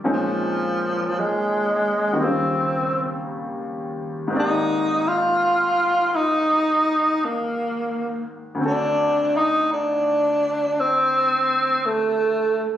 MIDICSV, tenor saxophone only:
0, 0, Header, 1, 2, 480
1, 0, Start_track
1, 0, Tempo, 1065719
1, 17, Time_signature, 4, 2, 24, 8
1, 5752, End_track
2, 0, Start_track
2, 0, Title_t, "Tenor saxophone"
2, 0, Program_c, 0, 66
2, 55, Note_on_c, 0, 53, 73
2, 539, Note_on_c, 0, 56, 76
2, 546, Note_off_c, 0, 53, 0
2, 1007, Note_on_c, 0, 60, 68
2, 1014, Note_off_c, 0, 56, 0
2, 1476, Note_off_c, 0, 60, 0
2, 1975, Note_on_c, 0, 63, 81
2, 2287, Note_on_c, 0, 65, 85
2, 2294, Note_off_c, 0, 63, 0
2, 2771, Note_on_c, 0, 63, 80
2, 2777, Note_off_c, 0, 65, 0
2, 3265, Note_on_c, 0, 58, 64
2, 3272, Note_off_c, 0, 63, 0
2, 3724, Note_off_c, 0, 58, 0
2, 3906, Note_on_c, 0, 62, 84
2, 4220, Note_on_c, 0, 63, 87
2, 4227, Note_off_c, 0, 62, 0
2, 4363, Note_off_c, 0, 63, 0
2, 4381, Note_on_c, 0, 62, 89
2, 4864, Note_on_c, 0, 60, 82
2, 4871, Note_off_c, 0, 62, 0
2, 5341, Note_on_c, 0, 57, 75
2, 5348, Note_off_c, 0, 60, 0
2, 5719, Note_off_c, 0, 57, 0
2, 5752, End_track
0, 0, End_of_file